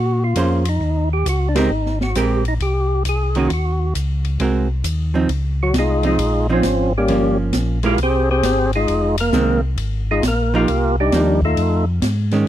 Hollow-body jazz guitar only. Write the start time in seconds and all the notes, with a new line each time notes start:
0.36 A#3 C#4 G#4 C5
1.55 G#3 C4 G4 A#4
2.16 G#3 C4 G4 A#4
3.36 D#3 A#3 C#4 F#4
4.40 G#3 C4 F#4 A#4
5.14 F3 C4 D#4
6.03 F3 C4 D#4
6.49 F3 C4 D#4
7.09 F3 A#3 C#4
7.83 G#3 A#3 E4
9.33 D#3 G#3 C4
10.54 F3 A#3 D#4
11.13 F3 A#3 D#4
12.33 D#3 G#3 C#4